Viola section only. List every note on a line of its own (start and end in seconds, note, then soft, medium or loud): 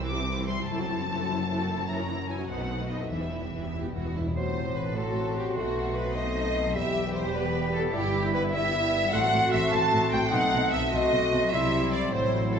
0.00 0.10 E3 soft
0.00 0.10 C4 soft
0.10 0.19 G3 medium
0.10 0.19 E4 soft
0.20 0.30 E3 soft
0.20 0.29 C4 medium
0.30 0.39 G3 soft
0.30 0.39 E4 medium
0.40 0.49 E3 soft
0.40 0.49 C4 soft
0.49 0.59 G3 soft
0.49 0.59 E4 soft
0.59 0.68 E3 soft
0.59 0.69 C4 soft
0.69 0.79 E3 medium
0.69 0.79 E4 medium
0.79 0.89 F#3 soft
0.79 0.89 C4 soft
0.89 0.99 E3 soft
0.89 0.99 E4 soft
0.99 1.09 F#3 soft
0.99 1.09 C4 soft
1.09 1.18 E3 soft
1.09 1.18 E4 soft
1.19 1.29 F#3 soft
1.19 1.29 C4 soft
1.28 1.39 E3 soft
1.28 1.39 E4 medium
1.38 1.48 F#3 soft
1.38 1.49 C4 soft
1.48 1.58 E3 soft
1.48 1.58 E4 soft
1.58 1.69 F#3 soft
1.58 1.69 C4 soft
1.69 1.79 E3 soft
1.69 1.79 E4 soft
1.78 1.89 F#3 soft
1.78 1.89 C4 soft
1.89 1.98 E3 soft
1.89 1.98 E4 medium
1.99 2.09 F#3 soft
1.99 2.09 C#4 soft
2.08 2.19 E3 soft
2.08 2.19 E4 soft
2.19 2.29 F#3 soft
2.19 2.29 C#4 soft
2.29 2.38 E3 soft
2.29 2.38 E4 soft
2.38 2.49 F#3 soft
2.38 2.49 C#4 soft
2.49 2.59 B3 soft
2.49 2.59 D#4 soft
2.59 2.70 A3 soft
2.59 2.70 C4 soft
2.69 2.80 B3 soft
2.69 2.80 D#4 soft
2.79 2.90 A3 soft
2.79 2.90 C4 soft
2.90 3.00 B3 soft
2.90 3.00 D#4 soft
3.00 3.11 A3 soft
3.00 3.11 C4 soft
3.11 3.21 E3 soft
3.11 3.21 E4 soft
3.21 3.32 G3 soft
3.21 3.32 B3 soft
3.32 3.43 E3 soft
3.32 3.43 E4 soft
3.43 3.53 G3 soft
3.43 3.53 B3 soft
3.53 3.63 E3 soft
3.53 3.63 E4 soft
3.64 3.74 G3 soft
3.64 3.74 B3 soft
3.74 3.85 E3 soft
3.74 3.85 E4 soft
3.85 3.95 G3 soft
3.85 3.95 B3 soft
3.96 4.05 E3 soft
3.96 4.05 E4 soft
4.06 4.17 G3 soft
4.06 4.17 B3 soft
4.16 4.27 E3 soft
4.16 4.27 E4 soft
4.27 4.37 G3 soft
4.27 4.37 B3 soft
4.97 6.12 F#4 medium
6.16 6.75 D#4 medium
6.76 7.91 G4 medium
7.94 9.14 E4 medium
9.14 10.30 F#4 medium
10.33 10.91 D#4 medium
10.92 11.51 F#4 medium
11.52 12.11 E4 medium
12.12 12.59 E4 medium